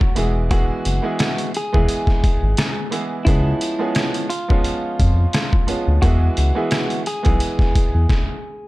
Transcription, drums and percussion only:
0.01 kick
0.16 closed hi-hat
0.51 kick, closed hi-hat
0.85 closed hi-hat
1.19 cross-stick, snare, closed hi-hat
1.38 closed hi-hat
1.54 closed hi-hat
1.74 kick
1.89 closed hi-hat
2.07 kick, snare
2.24 kick, closed hi-hat
2.57 cross-stick, snare, closed hi-hat
2.92 closed hi-hat
3.27 kick, closed hi-hat
3.61 closed hi-hat
3.95 cross-stick, snare, closed hi-hat
4.14 closed hi-hat
4.30 closed hi-hat
4.50 kick
4.64 closed hi-hat
5.00 kick, closed hi-hat
5.33 cross-stick, snare, closed hi-hat
5.53 kick
5.68 closed hi-hat
6.03 kick, closed hi-hat
6.37 closed hi-hat
6.71 cross-stick, snare, closed hi-hat
6.90 closed hi-hat
7.06 closed hi-hat
7.25 kick, closed hi-hat
7.40 closed hi-hat
7.59 kick, snare
7.75 kick, closed hi-hat
8.10 kick, snare

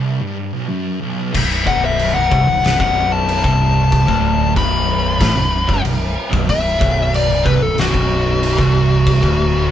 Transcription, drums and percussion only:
1.34 kick, crash
1.67 kick
1.99 crash
2.32 kick
2.64 snare, crash
2.80 kick
3.29 crash
3.44 kick
3.92 kick, crash
4.08 kick
4.56 kick, crash
5.21 kick, snare, crash
5.69 kick
5.85 crash
6.33 kick
6.49 kick, crash
6.81 kick
7.14 crash
7.46 kick
7.78 snare, crash
7.94 kick
8.43 crash
8.58 kick, snare
9.07 kick, crash
9.23 kick

